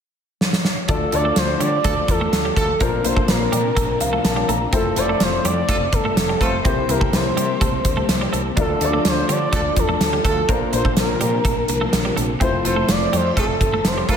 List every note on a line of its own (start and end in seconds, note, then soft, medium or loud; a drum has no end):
0.41 snare medium
0.53 snare medium
0.65 snare medium
0.88 1.06 D2 medium
0.88 2.79 D3 medium
0.88 1.57 D3 medium
0.88 6.61 F3 medium
0.88 1.07 A3 medium
0.88 2.79 A3 medium
0.88 1.07 D4 medium
0.88 0.97 D4 medium
0.88 2.79 F4 medium
0.88 1.07 F4 medium
0.88 1.16 A4 medium
0.88 1.07 D5 medium
0.88 kick loud
0.88 closed hi-hat medium
1.12 1.30 D2 medium
1.12 1.86 A3 medium
1.12 1.23 A3 medium
1.12 1.86 D4 medium
1.12 1.23 D4 medium
1.12 1.23 F4 medium
1.12 1.86 F4 medium
1.12 1.23 A4 medium
1.12 1.86 D5 medium
1.12 1.39 D5 loud
1.12 muted clean electric guitar stroke soft
1.12 closed hi-hat medium
1.25 1.32 A3 medium
1.36 1.54 D2 medium
1.36 1.63 C5 loud
1.36 snare loud
1.36 closed hi-hat medium
1.60 1.78 D3 medium
1.60 1.68 G3 medium
1.60 2.09 D5 loud
1.60 closed hi-hat medium
1.84 2.02 D2 loud
1.84 1.92 A3 medium
1.84 1.92 D4 medium
1.84 1.92 F4 medium
1.84 1.92 A4 loud
1.84 kick medium
1.84 closed hi-hat medium
2.08 2.26 E2 medium
2.08 2.54 A4 loud
2.08 muted clean electric guitar stroke soft
2.08 kick medium
2.08 closed hi-hat medium
2.21 2.29 A3 medium
2.32 2.50 D2 medium
2.32 muted clean electric guitar stroke soft
2.32 snare loud
2.32 closed hi-hat medium
2.45 2.53 G3 medium
2.56 2.74 D2 loud
2.56 2.64 A3 medium
2.56 2.72 A3 medium
2.56 2.72 D4 medium
2.56 2.72 F4 medium
2.56 2.72 A4 loud
2.56 2.84 A4 medium
2.56 kick medium
2.56 closed hi-hat medium
2.80 2.98 A#1 medium
2.80 3.49 A#2 medium
2.80 4.71 C3 medium
2.80 2.99 A#3 medium
2.80 2.88 A#3 medium
2.80 4.71 A#3 medium
2.80 2.99 D4 medium
2.80 4.71 D4 medium
2.80 2.99 F4 medium
2.80 3.07 A#4 medium
2.80 2.99 C5 medium
2.80 kick loud
2.80 closed hi-hat medium
3.04 3.22 A#1 medium
3.04 3.78 A#3 medium
3.04 3.78 D4 medium
3.04 3.78 F4 medium
3.04 3.78 C5 medium
3.04 3.31 C5 medium
3.04 muted clean electric guitar stroke soft
3.04 closed hi-hat medium
3.16 3.24 A3 medium
3.16 kick medium
3.28 3.46 A#1 medium
3.28 4.49 A#4 medium
3.28 snare loud
3.28 closed hi-hat medium
3.52 3.70 A#2 medium
3.52 3.60 G3 medium
3.52 closed hi-hat medium
3.76 3.94 A#1 medium
3.76 3.84 A3 medium
3.76 kick medium
3.76 closed hi-hat medium
4.00 4.18 C2 medium
4.00 4.23 F5 medium
4.00 muted clean electric guitar stroke soft
4.00 closed hi-hat medium
4.13 4.20 A3 medium
4.25 4.42 A#1 loud
4.25 4.48 A5 medium
4.25 muted clean electric guitar stroke soft
4.25 snare loud
4.25 closed hi-hat medium
4.36 4.44 G3 medium
4.48 4.66 A#1 loud
4.48 4.56 A3 medium
4.48 4.71 A#5 medium
4.48 closed hi-hat medium
4.73 4.90 F1 loud
4.73 8.53 C3 medium
4.73 4.91 A3 medium
4.73 6.63 A3 medium
4.73 4.81 C4 medium
4.73 4.91 E4 medium
4.73 4.91 F4 medium
4.73 5.00 A4 medium
4.73 4.92 C5 medium
4.73 8.54 E5 medium
4.73 kick medium
4.73 closed hi-hat medium
4.96 5.14 F1 loud
4.96 5.70 A3 medium
4.96 5.07 A3 medium
4.96 5.70 E4 medium
4.96 5.07 F4 medium
4.96 5.70 F4 medium
4.96 5.07 A4 medium
4.96 5.70 C5 medium
4.96 5.24 D5 loud
4.96 muted clean electric guitar stroke soft
4.96 closed hi-hat medium
5.09 5.17 A3 medium
5.20 5.38 F1 medium
5.20 5.47 C5 loud
5.20 snare loud
5.20 closed hi-hat medium
5.44 5.62 F2 medium
5.44 5.53 G3 medium
5.44 5.95 D5 loud
5.44 closed hi-hat medium
5.69 5.86 F1 loud
5.69 5.77 A3 medium
5.69 5.77 F4 medium
5.69 5.77 A4 loud
5.69 kick medium
5.69 closed hi-hat medium
5.93 6.10 G1 medium
5.93 6.43 A4 medium
5.93 muted clean electric guitar stroke soft
5.93 kick medium
5.93 closed hi-hat medium
6.05 6.13 A3 medium
6.17 6.34 F1 loud
6.17 muted clean electric guitar stroke soft
6.17 snare loud
6.17 closed hi-hat medium
6.29 6.37 G3 medium
6.41 6.58 F1 medium
6.41 6.56 A3 medium
6.41 6.49 A3 medium
6.41 6.56 F4 medium
6.41 6.56 A4 loud
6.41 6.65 C5 medium
6.41 kick medium
6.41 closed hi-hat medium
6.65 6.82 C2 loud
6.65 7.33 C3 medium
6.65 8.55 G3 medium
6.65 8.55 A#3 medium
6.65 6.83 A#3 medium
6.65 6.72 C4 medium
6.65 6.83 E4 medium
6.65 6.83 G4 medium
6.65 6.92 C5 medium
6.65 6.84 C5 medium
6.65 kick loud
6.65 closed hi-hat medium
6.89 7.06 C2 medium
6.89 7.62 A#3 medium
6.89 7.62 E4 medium
6.89 7.63 G4 medium
6.89 7.16 A#4 medium
6.89 7.63 C5 medium
6.89 muted clean electric guitar stroke soft
6.89 closed hi-hat medium
7.01 7.08 A3 medium
7.01 kick medium
7.13 7.30 C2 medium
7.13 8.34 C5 medium
7.13 snare loud
7.13 closed hi-hat medium
7.37 7.54 C3 medium
7.37 7.45 G3 medium
7.37 closed hi-hat medium
7.61 7.78 C2 medium
7.61 7.69 A3 medium
7.61 kick medium
7.61 closed hi-hat medium
7.85 8.02 D2 medium
7.85 muted clean electric guitar stroke soft
7.85 kick medium
7.85 closed hi-hat medium
7.97 8.04 A3 medium
8.09 8.26 C2 loud
8.09 muted clean electric guitar stroke soft
8.09 snare loud
8.09 closed hi-hat loud
8.21 8.29 G3 medium
8.33 8.50 C2 loud
8.33 8.40 A3 medium
8.33 closed hi-hat medium
8.57 8.74 D2 loud
8.57 10.47 D3 medium
8.57 9.25 D3 medium
8.57 10.47 F3 medium
8.57 8.75 A3 medium
8.57 10.47 A3 medium
8.57 8.64 D4 medium
8.57 8.75 D4 medium
8.57 8.76 F4 medium
8.57 10.47 F4 medium
8.57 8.86 A4 loud
8.57 8.76 D5 medium
8.57 kick loud
8.57 closed hi-hat medium
8.80 8.98 D2 loud
8.80 9.54 A3 medium
8.80 8.92 A3 medium
8.80 9.54 D4 medium
8.80 8.92 D4 medium
8.80 9.54 F4 medium
8.80 8.92 F4 medium
8.80 8.92 A4 medium
8.80 9.54 D5 medium
8.80 9.07 D5 loud
8.80 muted clean electric guitar stroke soft
8.80 closed hi-hat medium
8.93 9.01 A3 medium
9.05 9.22 D2 medium
9.05 9.33 C5 loud
9.05 snare loud
9.05 closed hi-hat medium
9.29 9.46 D3 medium
9.29 9.37 G3 medium
9.29 9.80 D5 loud
9.29 closed hi-hat medium
9.53 9.70 D2 medium
9.53 9.60 A3 medium
9.53 9.61 A3 medium
9.53 9.61 D4 medium
9.53 9.61 F4 medium
9.53 9.61 A4 loud
9.53 kick medium
9.53 closed hi-hat medium
9.76 9.94 E2 medium
9.76 10.26 A4 medium
9.76 muted clean electric guitar stroke soft
9.76 kick medium
9.76 closed hi-hat medium
9.89 9.96 A3 medium
10.01 10.18 D2 medium
10.01 muted clean electric guitar stroke soft
10.01 snare loud
10.01 closed hi-hat medium
10.13 10.21 G3 medium
10.25 10.42 D2 loud
10.25 10.32 A3 medium
10.25 10.41 A3 medium
10.25 10.40 D4 medium
10.25 10.41 F4 medium
10.25 10.41 A4 medium
10.25 10.52 A4 medium
10.25 kick medium
10.25 closed hi-hat medium
10.48 10.66 A#1 medium
10.48 11.17 A#2 medium
10.48 14.17 C3 medium
10.48 14.17 F3 medium
10.48 10.67 A#3 medium
10.48 10.56 A#3 medium
10.48 12.39 A#3 medium
10.48 10.67 D4 medium
10.48 12.39 D4 medium
10.48 10.67 F4 medium
10.48 10.74 A#4 medium
10.48 10.67 C5 medium
10.48 kick loud
10.48 closed hi-hat medium
10.72 10.90 A#1 loud
10.72 11.46 A#3 medium
10.72 11.46 D4 medium
10.72 11.46 F4 medium
10.72 11.46 C5 medium
10.72 10.96 C5 loud
10.72 muted clean electric guitar stroke soft
10.72 closed hi-hat medium
10.85 10.92 A3 medium
10.85 kick medium
10.97 11.14 A#1 medium
10.97 12.14 A#4 medium
10.97 snare loud
10.97 closed hi-hat medium
11.21 11.38 A#2 medium
11.21 11.28 G3 medium
11.21 closed hi-hat medium
11.45 11.62 A#1 medium
11.45 11.53 A3 medium
11.45 kick medium
11.45 closed hi-hat medium
11.68 11.86 C2 medium
11.68 muted clean electric guitar stroke soft
11.68 closed hi-hat medium
11.81 11.89 A3 medium
11.93 12.10 A#1 loud
11.93 muted clean electric guitar stroke soft
11.93 snare loud
11.93 closed hi-hat medium
12.05 12.13 G3 medium
12.17 12.34 A#1 loud
12.17 12.24 A3 medium
12.17 closed hi-hat medium
12.40 12.58 F1 medium
12.40 12.59 A3 medium
12.40 14.17 A3 medium
12.40 12.48 C4 medium
12.40 12.59 E4 medium
12.40 12.59 F4 medium
12.40 12.60 C5 medium
12.40 12.64 C5 loud
12.40 14.17 E5 medium
12.40 kick loud
12.40 closed hi-hat medium
12.65 12.82 F1 loud
12.65 13.38 A3 medium
12.65 12.75 A3 medium
12.65 13.38 E4 medium
12.65 12.75 F4 medium
12.65 13.38 F4 medium
12.65 12.75 A4 medium
12.65 13.38 C5 medium
12.65 12.92 C5 loud
12.65 muted clean electric guitar stroke soft
12.65 closed hi-hat medium
12.76 12.84 A3 medium
12.89 13.06 F1 medium
12.89 13.17 D5 loud
12.89 snare loud
12.89 closed hi-hat medium
13.13 13.30 F2 medium
13.13 13.21 G3 medium
13.13 13.38 C5 medium
13.13 closed hi-hat medium
13.37 13.54 F1 medium
13.37 13.45 A3 medium
13.37 13.45 F4 medium
13.37 13.45 A4 loud
13.37 13.88 A4 medium
13.37 kick medium
13.37 closed hi-hat medium
13.61 13.78 G1 medium
13.61 muted clean electric guitar stroke soft
13.61 kick medium
13.61 closed hi-hat medium
13.74 13.81 A3 medium
13.85 14.02 F1 loud
13.85 14.10 C5 medium
13.85 muted clean electric guitar stroke soft
13.85 snare loud
13.85 closed hi-hat medium
13.98 14.05 G3 medium
14.09 14.17 F1 loud
14.09 14.17 A3 medium
14.09 14.17 F4 medium
14.09 14.17 A4 loud
14.09 14.17 C5 medium
14.09 kick medium
14.09 closed hi-hat medium